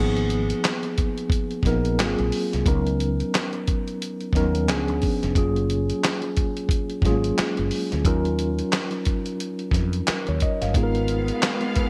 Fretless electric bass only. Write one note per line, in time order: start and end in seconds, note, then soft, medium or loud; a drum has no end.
0.00 0.51 G#1 medium
1.64 2.00 A#1 medium
2.00 2.15 G#1 loud
2.20 2.30 A#1 medium
2.54 2.64 C2 medium
2.67 3.21 C#2 loud
4.34 4.70 D#2 medium
4.70 4.89 C#2 medium
4.89 5.00 D2 medium
5.24 5.34 F1 medium
5.36 5.91 F#1 loud
7.03 7.31 G#1 medium
7.40 muted fretless electric bass stroke soft
7.59 7.70 F#1 medium
7.93 8.06 D2 medium
8.06 8.60 D#2 loud
9.73 10.01 F2 medium
10.09 muted fretless electric bass stroke soft
10.29 10.39 D#2 medium
10.62 10.75 G1 medium
10.75 11.30 G#1 medium